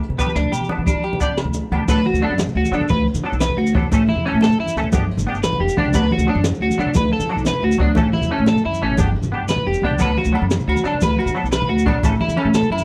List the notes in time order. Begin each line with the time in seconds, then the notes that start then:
0.02 closed hi-hat, low conga
0.09 B2, low conga
0.18 B3 D4 G4 B4, kick, closed hi-hat, low agogo, maracas
0.27 muted conga, high conga, maracas
0.35 D2 D4, snare, closed hi-hat
0.43 low conga
0.52 B2 G4, closed hi-hat, low conga, low agogo, maracas
0.61 high conga, low conga, maracas
0.69 B3 D4, closed hi-hat, muted conga, low conga
0.78 E3, low conga
0.86 D4, kick, closed hi-hat, high conga, low conga, low agogo, maracas
0.94 E3
1.03 G4, closed hi-hat, low conga, low agogo
1.13 muted conga, high conga, low conga
1.20 B3 D4 G4 D5, kick, closed hi-hat, low conga, maracas
1.28 C#3
1.37 snare, closed hi-hat, low conga, low agogo
1.44 D2, high conga, low conga
1.54 closed hi-hat, muted conga, maracas
1.64 low conga
1.71 D2 B3 D4, closed hi-hat, high conga, low conga, low agogo
1.75 G4
1.80 low conga
1.88 D2 F#3 B3 D4 A4 B4, kick, crash, muted conga, low conga, maracas
2.05 F#4, ride, high conga
2.13 D2, low conga, maracas
2.22 F#3 B3 D4 A4, ride
2.30 F#2, high conga, low conga
2.38 snare, ride, muted conga, maracas
2.47 low conga
2.55 D2 F#4, ride
2.64 high conga, low conga, maracas
2.72 D3 F#3 B3 D4 A4, ride, maracas
2.81 low conga
2.88 D2 B4, kick, ride, muted conga, high conga, low conga, maracas
3.07 ride, low conga
3.14 D3, high conga, low conga, maracas
3.24 F#3 B3 D4 A4, ride, low conga
3.32 B1, maracas
3.40 B4, snare, ride, muted conga, maracas
3.50 high conga, low conga
3.57 D2 F#4, ride, low conga
3.66 low conga, maracas
3.74 E2 F#3 B3 D4 A4, muted clean electric guitar stroke, kick, ride, high conga
3.84 low conga
3.91 A1 A3 C#4 A4, muted clean electric guitar stroke, kick, ride, muted conga, low conga, maracas
4.08 E4, ride, high conga
4.15 E2, low conga
4.25 E3 A3 C#4, ride, low conga
4.29 A4, high conga, low conga
4.34 A2
4.41 A4, snare, ride, muted conga, maracas
4.49 low conga, maracas
4.59 F#2 E4, ride
4.66 high conga, maracas
4.76 D2 A3 C#4 A4, snare, ride, maracas
4.84 low conga
4.92 G1 B3 D4 G4, kick, ride, muted conga, high conga, low conga, maracas
5.10 ride, low conga
5.17 G1, high conga, low conga, maracas
5.27 B3 D4 G4, ride, low conga
5.34 G1, maracas
5.43 B4, snare, ride, muted conga, maracas
5.53 high conga, low conga
5.59 E1 G4, ride, low conga
5.69 maracas
5.77 C#2 B3 D4 G4, kick, ride, high conga
5.86 low conga
5.94 D2 F#3 B3 D4 B4, muted clean electric guitar stroke, kick, ride, muted conga, low conga, maracas
6.11 F#4, ride, high conga
6.18 D2, low conga, maracas
6.27 F#3 B3 D4 A4, ride, low conga
6.35 F#2, high conga, low conga
6.44 snare, ride, muted conga, maracas
6.52 low conga, maracas
6.60 D2 F#4, ride
6.70 high conga, low conga, maracas
6.78 D3 F#3 B3 D4 A4, ride, maracas
6.86 low conga
6.94 D2 B4, kick, ride, muted conga, high conga, low conga, maracas
7.12 A4, ride, low conga
7.20 D3, high conga, low conga, maracas
7.29 F#3 D4 A4, muted clean electric guitar stroke, ride, low conga
7.36 B1, maracas
7.45 B4, snare, ride, muted conga, maracas
7.53 high conga, low conga
7.62 D2 F#4, ride, low conga
7.70 low conga, maracas
7.78 D2 F#3 B3 D4, kick, ride, high conga
7.95 A1 E3 A3 C#4 A4, kick, ride, muted conga, maracas
8.04 low conga
8.13 E4, ride, high conga, low conga
8.21 E2, low conga, maracas
8.30 E3 A3 C#4 A4, ride
8.38 A2, high conga, low conga
8.46 A4, snare, ride, muted conga, low conga, maracas
8.55 low conga, maracas
8.64 F#2 E4, ride, low conga
8.72 high conga, maracas
8.81 A1 E3 A3 C#4 A4, ride, low conga
8.90 low conga
8.97 G1 B3 D4 G4, kick, ride, muted conga, high conga, maracas
9.16 ride
9.23 G1, high conga, low conga, maracas
9.32 B3 D4 G4, ride, low conga
9.42 G1
9.48 B4, snare, ride, muted conga, maracas
9.56 high conga, low conga
9.65 E1 G4, ride, low conga
9.74 low conga, maracas
9.82 C#2 B3 D4, kick, ride, high conga, low conga
9.86 G4
9.90 low conga
9.99 D2 F#3 B3 D4 A4 B4, kick, ride, muted conga, low conga, low agogo, maracas
10.17 F#4, ride, high conga
10.25 D2, low conga, maracas
10.32 F#3 B3 D4 A4, muted clean electric guitar stroke, ride, low conga, low agogo
10.42 F#2, high conga, low conga
10.51 snare, ride, muted conga, maracas
10.60 low conga, maracas
10.67 D2 F#4, ride, low agogo
10.76 high conga, low conga, maracas
10.84 D3 F#3 D4 A4, muted clean electric guitar stroke, snare, ride, maracas
10.94 low conga
11.01 D2 B4, kick, ride, muted conga, high conga, low conga, low agogo, maracas
11.19 F#4, ride, low conga, low agogo
11.26 D3, high conga, low conga, maracas
11.35 F#3 B3 D4 A4, ride, low conga
11.43 B1, maracas
11.52 B4, snare, ride, muted conga, low agogo, maracas
11.62 high conga, low conga
11.69 D2 F#4, ride, low conga
11.78 low conga, maracas
11.86 A#1 F#3 B3 D4 A4, kick, ride, high conga, low agogo
11.95 low conga
12.03 A1 E3 A3 C#4 A4, kick, ride, muted conga, low conga, low agogo, maracas
12.21 E4, ride, high conga
12.28 E2, low conga, maracas
12.37 E3 A3 C#4 A4, ride, low conga, low agogo
12.45 A2, high conga, low conga
12.54 A4, snare, ride, muted conga, maracas
12.62 low conga, maracas
12.70 F#2 E4, ride, low agogo
12.78 high conga, low conga, maracas